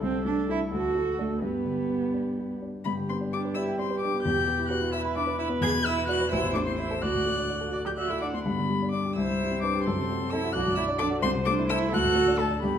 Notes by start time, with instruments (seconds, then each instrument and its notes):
Already playing: violin A4
0.01 grand piano C2, cello C4, viola A4
0.25 grand piano A3, cello D4
0.49 grand piano E4 A4, cello E4
0.71 grand piano D2, cello F#4, violin A4, viola A4
0.95 grand piano A3
1.19 cello A3, grand piano D4 A4
1.41 grand piano G2, cello B3, viola G4, violin B4
1.65 grand piano D3
1.89 grand piano B3
2.13 grand piano D4
2.38 grand piano G4
2.62 grand piano D4
2.84 grand piano G2, cello B3, viola G4, violin B5
2.97 grand piano D3
3.08 grand piano B3, cello C4, violin C6
3.21 grand piano D4
3.32 cello D4, grand piano G4, violin D6
3.45 grand piano B4
3.55 cello E4, grand piano D5, violin E6
3.68 grand piano G5
3.78 cello C4, grand piano D5, violin C6
3.90 grand piano B4
4.01 cello D4, grand piano G4, violin D6
4.14 grand piano B3
4.23 grand piano E2, cello G4, violin G6
4.37 grand piano B2
4.48 grand piano B3
4.59 grand piano E4
4.69 cello F#4, grand piano B4, violin F#6
4.81 grand piano E4
4.92 cello E4, viola B4, grand piano E5, violin E6
5.05 grand piano B5
5.16 cello D4, grand piano E5, violin D6
5.27 grand piano B4
5.38 cello E4, grand piano E4, violin E6
5.49 grand piano B3
5.61 grand piano E2, cello G#4, violin G#6
5.73 grand piano B2
5.84 grand piano B3, cello E4, violin E6
5.96 grand piano E4
6.07 cello F#4, grand piano D5, violin F#6
6.21 grand piano B4
6.30 grand piano A1, cello E4, viola C5, violin E6
6.44 grand piano E2
6.54 grand piano A3, cello D4, violin D6
6.66 cello C4, grand piano E4, violin C6
6.78 cello E4, grand piano C5, violin E6
6.91 grand piano A4
7.02 grand piano D2, cello F#4, viola D5, violin F#6
7.14 grand piano A2
7.26 grand piano A3
7.38 grand piano D4
7.50 grand piano D5
7.61 grand piano A4
7.72 grand piano D5, viola D5
7.85 cello G4, grand piano D6, violin G6
7.97 cello F#4, grand piano D5, viola E5, violin F#6
8.10 cello E4, grand piano A4, violin E6
8.21 cello D4, grand piano D5, viola F#5, violin D6
8.33 grand piano A3, cello C4, violin C6
8.45 grand piano G2, cello B3, violin B5
8.58 grand piano D3
8.70 grand piano G3
8.82 grand piano D4
8.92 cello D4, grand piano D5, violin D6
9.05 grand piano G4
9.16 grand piano C2, cello E4, viola C5, violin E6
9.29 grand piano G2
9.41 grand piano G3
9.51 grand piano C4
9.62 cello D4, grand piano B4, violin D6
9.75 grand piano G4
9.84 grand piano F#2, cello C4, viola A4, violin C6
9.99 grand piano C3
10.10 grand piano F#3
10.22 grand piano C4
10.30 cello E4, grand piano A4, violin E6
10.44 grand piano F#4
10.53 grand piano B1, cello F#4, viola D5, violin F#6
10.66 grand piano F#2
10.75 grand piano F#3, cello E4, violin E6
10.88 grand piano D4
10.99 cello D4, grand piano A4, violin D6
11.10 grand piano F#4
11.22 grand piano C2, cello C4, viola C5, violin C6
11.35 grand piano C3
11.45 grand piano A3, cello D4, violin D6
11.59 grand piano E4
11.69 cello E4, grand piano A4, violin E6
11.81 grand piano E4
11.92 grand piano D2, cello F#4, viola A4, violin F#6
12.04 grand piano A2
12.16 grand piano A3
12.28 grand piano D4
12.38 cello A3, grand piano A4, violin A5
12.51 grand piano D4
12.63 grand piano G2, cello B3, viola G4, violin B5
12.75 grand piano D3